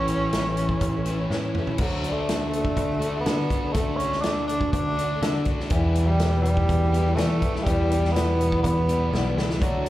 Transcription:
Already playing: picked electric bass A1, overdriven electric guitar A2 E3 A3 C#4 E4, steel-string acoustic guitar C#4 E4, tenor saxophone C#4
0.08 steel-string acoustic guitar E3, closed hi-hat
0.12 steel-string acoustic guitar A3 C#4 E4
0.33 steel-string acoustic guitar A2 E3 A3 C#4, snare, closed hi-hat
0.38 steel-string acoustic guitar E4
0.48 steel-string acoustic guitar A3 C#4 E4
0.57 steel-string acoustic guitar E3 A3 C#4, closed hi-hat
0.62 steel-string acoustic guitar E4
0.69 kick
0.81 picked electric bass A1, kick, closed hi-hat
0.94 steel-string acoustic guitar A3 C#4 E4
1.05 overdriven electric guitar A2 E4, steel-string acoustic guitar E3 A3 C#4, closed hi-hat
1.10 steel-string acoustic guitar E4
1.19 steel-string acoustic guitar A3 C#4 E4
1.30 picked electric bass A2, steel-string acoustic guitar A2 E3 A3 C#4 E4, snare
1.55 steel-string acoustic guitar E3 A3, mid tom
1.59 steel-string acoustic guitar C#4 E4
1.67 steel-string acoustic guitar A3 C#4 E4, floor tom
1.78 picked electric bass D2, tenor saxophone F#3, kick, crash
1.82 steel-string acoustic guitar D3 A3 D4 F#4
2.04 steel-string acoustic guitar D3 A3, closed hi-hat
2.08 tenor saxophone A3, steel-string acoustic guitar D4 F#4
2.29 steel-string acoustic guitar D3 A3 D4 F#4, snare, closed hi-hat
2.41 steel-string acoustic guitar A3 D4 F#4
2.49 tenor saxophone A3
2.53 steel-string acoustic guitar D3 A3, closed hi-hat
2.57 steel-string acoustic guitar D4 F#4
2.65 kick
2.77 picked electric bass D2, kick, closed hi-hat
2.92 steel-string acoustic guitar A3 D4 F#4
3.00 steel-string acoustic guitar D3, overdriven electric guitar D4 F#4, closed hi-hat
3.05 steel-string acoustic guitar A3 D4 F#4
3.16 steel-string acoustic guitar A3 D4 F#4
3.20 tenor saxophone B3
3.26 picked electric bass D3, steel-string acoustic guitar D3 A3 D4, snare, closed hi-hat
3.30 steel-string acoustic guitar F#4
3.50 steel-string acoustic guitar D3 A3, kick, closed hi-hat
3.55 steel-string acoustic guitar D4 F#4
3.64 steel-string acoustic guitar A3 D4 F#4
3.73 picked electric bass D2, steel-string acoustic guitar D3 A3, tenor saxophone A3, kick, closed hi-hat
3.77 steel-string acoustic guitar D4 F#4
3.96 steel-string acoustic guitar D3, tenor saxophone C#4, closed hi-hat
4.01 steel-string acoustic guitar A3 D4 F#4
4.12 snare
4.22 steel-string acoustic guitar D3, tenor saxophone D4, snare, closed hi-hat
4.26 steel-string acoustic guitar A3 D4 F#4
4.47 steel-string acoustic guitar D3 A3 D4, tenor saxophone D4, closed hi-hat
4.52 steel-string acoustic guitar F#4
4.61 kick
4.73 picked electric bass D2, tenor saxophone D4, kick, closed hi-hat
4.87 steel-string acoustic guitar A3 D4 F#4
4.97 steel-string acoustic guitar D3 A3, overdriven electric guitar F#4, closed hi-hat
5.02 steel-string acoustic guitar D4 F#4
5.12 steel-string acoustic guitar A3 D4 F#4
5.22 picked electric bass D3, steel-string acoustic guitar D3 A3 D4, snare, closed hi-hat
5.27 steel-string acoustic guitar F#4
5.45 steel-string acoustic guitar D3 A3, kick, closed hi-hat
5.50 steel-string acoustic guitar D4 F#4
5.60 steel-string acoustic guitar A3 D4 F#4, snare
5.69 picked electric bass E2, tenor saxophone E3, overdriven electric guitar G4, kick, closed hi-hat
5.73 steel-string acoustic guitar E2 B2 E3 G3 B3 E4
5.95 steel-string acoustic guitar E3 G3, closed hi-hat
5.99 steel-string acoustic guitar B3 E4
6.06 tenor saxophone G3
6.19 steel-string acoustic guitar E2 B2 E3 B3, snare, closed hi-hat
6.23 steel-string acoustic guitar G3 E4
6.42 steel-string acoustic guitar E3, tenor saxophone G3, closed hi-hat
6.47 steel-string acoustic guitar G3 B3 E4
6.57 kick
6.69 picked electric bass E2, kick, closed hi-hat
6.83 steel-string acoustic guitar E3 G3 B3 E4
6.92 overdriven electric guitar E2 B2 G4, steel-string acoustic guitar E3 G3, closed hi-hat
6.96 steel-string acoustic guitar B3 E4
7.06 steel-string acoustic guitar E3 G3 B3 E4
7.15 steel-string acoustic guitar E2 B2 E3 G3, picked electric bass E3, tenor saxophone A3, snare, closed hi-hat
7.19 steel-string acoustic guitar B3 E4, overdriven electric guitar G4
7.42 steel-string acoustic guitar E3 G3 B3 E4, kick, closed hi-hat
7.54 steel-string acoustic guitar E3 G3 B3 E4, snare
7.63 picked electric bass E2, steel-string acoustic guitar E2, tenor saxophone G3, kick, closed hi-hat
7.67 steel-string acoustic guitar B2 E3 G3 B3 E4, overdriven electric guitar G4
7.90 steel-string acoustic guitar E3 G3 B3, closed hi-hat
7.94 steel-string acoustic guitar E4
8.05 snare
8.12 steel-string acoustic guitar E2 B2 E3, tenor saxophone B3
8.16 steel-string acoustic guitar G3 B3 E4, snare, closed hi-hat
8.40 steel-string acoustic guitar E3 G3 B3 E4, closed hi-hat
8.52 kick
8.63 picked electric bass E2, tenor saxophone B3, kick, closed hi-hat
8.77 steel-string acoustic guitar E3 B3 E4
8.89 overdriven electric guitar E2 B2 G4, steel-string acoustic guitar E3 G3 B3 E4, closed hi-hat
9.12 picked electric bass B1, steel-string acoustic guitar E2 B2 E3 G3 B3 E4, overdriven electric guitar G4, snare
9.37 picked electric bass C#2, steel-string acoustic guitar E3 G3 B3, snare
9.42 steel-string acoustic guitar E4
9.50 steel-string acoustic guitar E3 G3 B3 E4, snare
9.61 picked electric bass D2, steel-string acoustic guitar D3 A3 D4 F#4, tenor saxophone F#3, kick, closed hi-hat
9.86 steel-string acoustic guitar D3

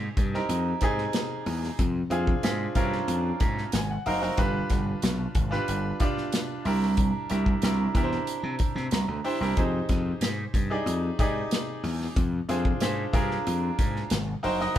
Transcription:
Already playing: grand piano C4 D#4 G4 G#4
0.17 slap bass G2, kick, closed hi-hat
0.34 grand piano C4 D#4 G4 A#4, snare
0.49 slap bass F2, closed hi-hat
0.81 slap bass G#2, grand piano C4 D#4 G4 G#4, kick, closed hi-hat
0.98 snare
1.13 snare, closed hi-hat
1.46 slap bass E2, open hi-hat
1.64 snare
1.79 slap bass F2, kick, closed hi-hat
2.10 slap bass F2, grand piano C4 D4 F4 G#4, closed hi-hat
2.27 kick
2.43 slap bass G#2, grand piano C4 D4 F4 G#4, snare, closed hi-hat
2.75 slap bass G2, grand piano C4 C#4 F4 A#4, kick, closed hi-hat
2.82 grand piano D4
2.92 snare
3.08 slap bass F2, closed hi-hat
3.40 slap bass G#2, grand piano A#5, kick, closed hi-hat
3.58 snare
3.72 slap bass G#1, grand piano G#5, snare, closed hi-hat
3.90 grand piano F#5
4.06 slap bass F#1, grand piano C4 D#4 F#4 A#4 F5, open hi-hat
4.22 grand piano C4 D#4 F#4 A#4, snare
4.37 slap bass G1, grand piano D4 F4 G4 B4, kick, closed hi-hat
4.70 slap bass G1, kick, snare, closed hi-hat
5.02 slap bass B1, snare, closed hi-hat
5.35 slap bass G#1, kick, closed hi-hat
5.51 grand piano D4 F4 G4 B4, snare
5.68 slap bass G1, closed hi-hat
6.00 grand piano D4 F4 G4 D5, kick, closed hi-hat
6.17 snare
6.32 snare, closed hi-hat
6.65 slap bass C2, grand piano D4 E4 G4 A#4, open hi-hat
6.82 snare
6.97 kick, closed hi-hat
7.30 slap bass C2, grand piano D4 E4 G4 A#4, snare, closed hi-hat
7.46 kick
7.62 slap bass C2, grand piano D4 E4 G4 A#4, snare, closed hi-hat
7.94 slap bass E2, grand piano D4 E4 G4 A#4, kick, closed hi-hat
8.03 grand piano C5
8.12 snare
8.27 closed hi-hat
8.43 slap bass C3
8.59 kick, closed hi-hat
8.75 slap bass C3, snare
8.91 slap bass C2, grand piano A#5, snare, closed hi-hat
9.08 slap bass D2
9.24 grand piano D4 E4 G4 C5 G5, open hi-hat
9.41 slap bass C2, grand piano D4 E4 G4 A#4, snare
9.57 slap bass F2, grand piano D#4 G4 G#4 C5, kick, closed hi-hat
9.89 slap bass F2, kick, snare, closed hi-hat
10.21 slap bass G#2, snare, closed hi-hat
10.54 slap bass G2, kick, closed hi-hat
10.70 grand piano D#4 G4 G#4 D5
10.86 slap bass F2, closed hi-hat
11.19 slap bass G#2, grand piano D#4 G4 G#4 D5, kick, closed hi-hat
11.51 snare, closed hi-hat
11.83 slap bass E2, open hi-hat
12.01 snare
12.16 slap bass F2, kick, closed hi-hat
12.49 slap bass F2, grand piano D4 F4 G#4 C5, snare, closed hi-hat
12.65 kick
12.80 slap bass G#2, grand piano D4 F4 G#4 C5, snare, closed hi-hat
13.13 slap bass G2, grand piano D4 F4 G#4 A#4, kick, closed hi-hat
13.31 snare
13.47 slap bass F2, closed hi-hat
13.79 slap bass G#2, kick, closed hi-hat
13.96 snare
14.10 slap bass G#1, snare, closed hi-hat
14.43 slap bass F#1, grand piano D#4 F#4 A#4 C5, open hi-hat
14.60 grand piano D#4 F#4 A#4 D#5, snare
14.74 grand piano D4 F4

